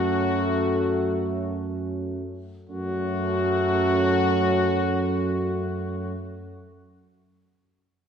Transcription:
0.00 2.28 F#2 medium
0.00 2.25 F#3 medium
0.00 2.24 A3 medium
0.00 2.23 C#4 medium
0.00 1.47 F#4 medium
2.69 6.15 F#2 medium
2.69 6.14 F#3 medium
2.69 6.13 A3 medium
2.69 6.14 C#4 medium
2.69 6.14 F#4 medium

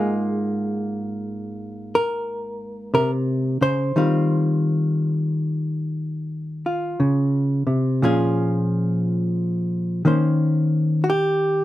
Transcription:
0.00 3.90 G#2 medium
0.00 3.91 G#3 medium
0.00 3.95 A#3 soft
0.00 3.92 F4 medium
0.00 1.94 G#4 medium
1.95 2.93 A#4 loud
2.94 3.60 C3 medium
2.94 3.11 A#4 medium
3.61 3.95 C#3 medium
3.61 7.68 C5 loud
3.96 6.99 D#3 medium
3.96 7.99 G3 medium
3.96 7.99 C4 medium
3.96 6.66 F4 medium
6.66 8.04 F4 soft
7.00 7.66 C#3 medium
7.67 8.02 C3 medium
8.02 10.01 A#2 medium
8.02 10.05 F3 medium
8.02 10.02 C#4 medium
8.02 10.08 F4 medium
8.02 10.02 G#4 medium
10.05 11.64 D#3 medium
10.05 11.64 A#3 soft
10.05 11.64 C#4 soft
10.05 11.09 C5 soft
11.04 11.08 F#4 medium
11.10 11.64 G4 medium

